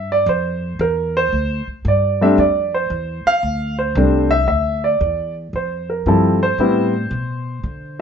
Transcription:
0, 0, Header, 1, 4, 480
1, 0, Start_track
1, 0, Key_signature, -1, "major"
1, 0, Tempo, 525394
1, 259, Time_signature, 4, 2, 24, 8
1, 7319, End_track
2, 0, Start_track
2, 0, Title_t, "Grand piano"
2, 0, Program_c, 0, 0
2, 0, Note_on_c, 0, 76, 96
2, 109, Note_on_c, 0, 74, 104
2, 112, Note_off_c, 0, 76, 0
2, 253, Note_off_c, 0, 74, 0
2, 265, Note_on_c, 0, 72, 87
2, 738, Note_on_c, 0, 70, 85
2, 757, Note_off_c, 0, 72, 0
2, 1067, Note_on_c, 0, 72, 105
2, 1069, Note_off_c, 0, 70, 0
2, 1510, Note_off_c, 0, 72, 0
2, 1719, Note_on_c, 0, 74, 86
2, 2022, Note_on_c, 0, 55, 75
2, 2023, Note_on_c, 0, 57, 66
2, 2028, Note_on_c, 0, 60, 64
2, 2031, Note_on_c, 0, 62, 83
2, 2032, Note_on_c, 0, 76, 97
2, 2039, Note_off_c, 0, 74, 0
2, 2165, Note_off_c, 0, 55, 0
2, 2166, Note_off_c, 0, 57, 0
2, 2169, Note_off_c, 0, 60, 0
2, 2170, Note_off_c, 0, 62, 0
2, 2188, Note_on_c, 0, 74, 89
2, 2191, Note_off_c, 0, 76, 0
2, 2482, Note_off_c, 0, 74, 0
2, 2507, Note_on_c, 0, 72, 91
2, 2987, Note_on_c, 0, 77, 127
2, 2998, Note_off_c, 0, 72, 0
2, 3430, Note_off_c, 0, 77, 0
2, 3459, Note_on_c, 0, 72, 88
2, 3624, Note_on_c, 0, 55, 58
2, 3628, Note_on_c, 0, 57, 55
2, 3629, Note_on_c, 0, 62, 74
2, 3631, Note_on_c, 0, 60, 61
2, 3910, Note_off_c, 0, 55, 0
2, 3912, Note_off_c, 0, 57, 0
2, 3913, Note_off_c, 0, 62, 0
2, 3914, Note_off_c, 0, 60, 0
2, 3934, Note_on_c, 0, 76, 115
2, 3954, Note_off_c, 0, 72, 0
2, 4077, Note_off_c, 0, 76, 0
2, 4091, Note_on_c, 0, 76, 91
2, 4423, Note_on_c, 0, 74, 85
2, 4426, Note_off_c, 0, 76, 0
2, 4868, Note_off_c, 0, 74, 0
2, 5076, Note_on_c, 0, 72, 79
2, 5367, Note_off_c, 0, 72, 0
2, 5387, Note_on_c, 0, 70, 65
2, 5543, Note_on_c, 0, 53, 62
2, 5546, Note_on_c, 0, 55, 57
2, 5547, Note_on_c, 0, 60, 56
2, 5549, Note_off_c, 0, 70, 0
2, 5550, Note_on_c, 0, 64, 69
2, 5556, Note_on_c, 0, 69, 84
2, 5830, Note_off_c, 0, 53, 0
2, 5832, Note_off_c, 0, 55, 0
2, 5832, Note_off_c, 0, 60, 0
2, 5833, Note_off_c, 0, 64, 0
2, 5872, Note_on_c, 0, 72, 97
2, 5878, Note_off_c, 0, 69, 0
2, 6025, Note_on_c, 0, 55, 68
2, 6028, Note_on_c, 0, 60, 60
2, 6029, Note_on_c, 0, 59, 64
2, 6031, Note_on_c, 0, 64, 74
2, 6311, Note_off_c, 0, 55, 0
2, 6313, Note_off_c, 0, 59, 0
2, 6313, Note_off_c, 0, 60, 0
2, 6314, Note_off_c, 0, 64, 0
2, 7319, Note_off_c, 0, 72, 0
2, 7319, End_track
3, 0, Start_track
3, 0, Title_t, "Upright bass"
3, 0, Program_c, 1, 32
3, 0, Note_on_c, 1, 43, 86
3, 235, Note_off_c, 1, 43, 0
3, 240, Note_on_c, 1, 41, 94
3, 715, Note_off_c, 1, 41, 0
3, 725, Note_on_c, 1, 40, 97
3, 1198, Note_off_c, 1, 40, 0
3, 1210, Note_on_c, 1, 38, 83
3, 1512, Note_off_c, 1, 38, 0
3, 1688, Note_on_c, 1, 43, 93
3, 2160, Note_off_c, 1, 43, 0
3, 2173, Note_on_c, 1, 41, 86
3, 2642, Note_off_c, 1, 41, 0
3, 2649, Note_on_c, 1, 40, 83
3, 2952, Note_off_c, 1, 40, 0
3, 3133, Note_on_c, 1, 38, 81
3, 3602, Note_off_c, 1, 38, 0
3, 3612, Note_on_c, 1, 36, 99
3, 4082, Note_off_c, 1, 36, 0
3, 4090, Note_on_c, 1, 38, 76
3, 4561, Note_off_c, 1, 38, 0
3, 4574, Note_on_c, 1, 40, 87
3, 5043, Note_off_c, 1, 40, 0
3, 5053, Note_on_c, 1, 41, 75
3, 5522, Note_off_c, 1, 41, 0
3, 5535, Note_on_c, 1, 43, 82
3, 6004, Note_off_c, 1, 43, 0
3, 6012, Note_on_c, 1, 45, 84
3, 6482, Note_off_c, 1, 45, 0
3, 6493, Note_on_c, 1, 47, 87
3, 6962, Note_off_c, 1, 47, 0
3, 6975, Note_on_c, 1, 50, 74
3, 7319, Note_off_c, 1, 50, 0
3, 7319, End_track
4, 0, Start_track
4, 0, Title_t, "Muted upright bass strokes"
4, 1528, Note_on_c, 9, 29, 44
4, 1619, Note_off_c, 9, 29, 0
4, 2975, Note_on_c, 9, 29, 44
4, 3067, Note_off_c, 9, 29, 0
4, 7319, End_track
0, 0, End_of_file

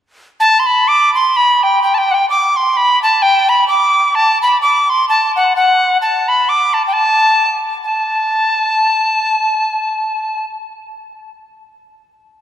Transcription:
0, 0, Header, 1, 2, 480
1, 0, Start_track
1, 0, Tempo, 467290
1, 408, Time_signature, 2, 2, 24, 8
1, 4727, Tempo, 462963
1, 12828, End_track
2, 0, Start_track
2, 0, Title_t, "Tin whistle"
2, 0, Program_c, 0, 75
2, 413, Note_on_c, 0, 81, 100
2, 611, Note_on_c, 0, 84, 59
2, 627, Note_off_c, 0, 81, 0
2, 680, Note_on_c, 0, 83, 86
2, 695, Note_off_c, 0, 84, 0
2, 903, Note_on_c, 0, 86, 93
2, 918, Note_off_c, 0, 83, 0
2, 1168, Note_off_c, 0, 86, 0
2, 1177, Note_on_c, 0, 84, 87
2, 1402, Note_on_c, 0, 83, 105
2, 1417, Note_off_c, 0, 84, 0
2, 1677, Note_on_c, 0, 79, 84
2, 1692, Note_off_c, 0, 83, 0
2, 1868, Note_off_c, 0, 79, 0
2, 1876, Note_on_c, 0, 79, 76
2, 1996, Note_on_c, 0, 81, 51
2, 2011, Note_off_c, 0, 79, 0
2, 2036, Note_on_c, 0, 79, 76
2, 2052, Note_off_c, 0, 81, 0
2, 2170, Note_on_c, 0, 78, 57
2, 2185, Note_off_c, 0, 79, 0
2, 2194, Note_on_c, 0, 79, 67
2, 2209, Note_off_c, 0, 78, 0
2, 2343, Note_off_c, 0, 79, 0
2, 2359, Note_on_c, 0, 86, 92
2, 2634, Note_on_c, 0, 84, 80
2, 2649, Note_off_c, 0, 86, 0
2, 2843, Note_on_c, 0, 83, 88
2, 2859, Note_off_c, 0, 84, 0
2, 3099, Note_off_c, 0, 83, 0
2, 3111, Note_on_c, 0, 81, 79
2, 3311, Note_on_c, 0, 79, 98
2, 3326, Note_off_c, 0, 81, 0
2, 3585, Note_on_c, 0, 83, 81
2, 3601, Note_off_c, 0, 79, 0
2, 3774, Note_off_c, 0, 83, 0
2, 3780, Note_on_c, 0, 86, 89
2, 4263, Note_on_c, 0, 81, 91
2, 4279, Note_off_c, 0, 86, 0
2, 4526, Note_off_c, 0, 81, 0
2, 4543, Note_on_c, 0, 83, 74
2, 4724, Note_off_c, 0, 83, 0
2, 4743, Note_on_c, 0, 86, 86
2, 5033, Note_on_c, 0, 84, 72
2, 5048, Note_off_c, 0, 86, 0
2, 5224, Note_off_c, 0, 84, 0
2, 5235, Note_on_c, 0, 81, 75
2, 5475, Note_off_c, 0, 81, 0
2, 5514, Note_on_c, 0, 78, 65
2, 5692, Note_off_c, 0, 78, 0
2, 5722, Note_on_c, 0, 78, 82
2, 6153, Note_off_c, 0, 78, 0
2, 6194, Note_on_c, 0, 81, 78
2, 6470, Note_on_c, 0, 83, 75
2, 6485, Note_off_c, 0, 81, 0
2, 6684, Note_on_c, 0, 86, 72
2, 6700, Note_off_c, 0, 83, 0
2, 6941, Note_on_c, 0, 81, 63
2, 6956, Note_off_c, 0, 86, 0
2, 7034, Note_off_c, 0, 81, 0
2, 7081, Note_on_c, 0, 79, 55
2, 7143, Note_on_c, 0, 81, 72
2, 7158, Note_off_c, 0, 79, 0
2, 7806, Note_off_c, 0, 81, 0
2, 8085, Note_on_c, 0, 81, 77
2, 10791, Note_off_c, 0, 81, 0
2, 12828, End_track
0, 0, End_of_file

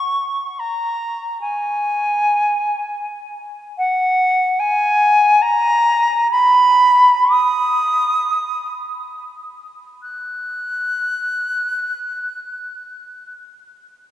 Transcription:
0, 0, Header, 1, 2, 480
1, 0, Start_track
1, 0, Key_signature, 6, "major"
1, 0, Tempo, 500000
1, 13546, End_track
2, 0, Start_track
2, 0, Title_t, "Flute"
2, 0, Program_c, 0, 73
2, 0, Note_on_c, 0, 85, 104
2, 571, Note_on_c, 0, 82, 92
2, 586, Note_off_c, 0, 85, 0
2, 1350, Note_off_c, 0, 82, 0
2, 1356, Note_on_c, 0, 80, 98
2, 3203, Note_off_c, 0, 80, 0
2, 3631, Note_on_c, 0, 78, 120
2, 4412, Note_on_c, 0, 80, 114
2, 4427, Note_off_c, 0, 78, 0
2, 5203, Note_on_c, 0, 82, 125
2, 5217, Note_off_c, 0, 80, 0
2, 6056, Note_off_c, 0, 82, 0
2, 6062, Note_on_c, 0, 83, 127
2, 7021, Note_on_c, 0, 87, 117
2, 7035, Note_off_c, 0, 83, 0
2, 8911, Note_off_c, 0, 87, 0
2, 9625, Note_on_c, 0, 90, 93
2, 12799, Note_off_c, 0, 90, 0
2, 13546, End_track
0, 0, End_of_file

